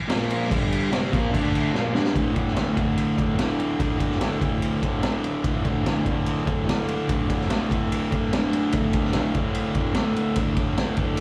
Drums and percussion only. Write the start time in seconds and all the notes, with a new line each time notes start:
0.10 snare, crash
0.30 crash
0.41 snare
0.51 kick, crash
0.72 crash
0.93 snare, crash
1.13 kick, crash
1.34 kick, crash
1.55 crash
1.74 snare
1.95 snare
2.05 snare
2.16 kick, ride
2.36 kick, ride
2.47 snare
2.56 snare, ride
2.77 kick, ride
2.98 ride
3.18 kick, ride
3.39 snare, ride
3.60 ride
3.80 kick, ride
4.00 kick, ride
4.11 snare
4.21 snare, ride
4.41 kick, ride
4.62 ride
4.83 kick, ride
5.03 snare, ride
5.24 ride
5.44 kick, ride
5.65 kick, ride
5.86 snare, ride
6.06 kick, ride
6.26 ride
6.47 kick, ride
6.69 snare, ride
6.88 ride
7.09 kick, ride
7.30 kick, ride
7.41 snare
7.50 snare, ride
7.71 kick, ride
7.92 ride
8.12 kick, ride
8.33 snare, ride
8.53 ride
8.72 kick, ride
8.93 kick, ride
9.04 snare
9.13 snare, ride
9.34 kick, ride
9.55 ride
9.75 kick, ride
9.94 snare, ride
10.16 ride
10.36 kick, ride
10.56 kick, ride
10.78 snare, ride
10.97 kick, ride
11.17 ride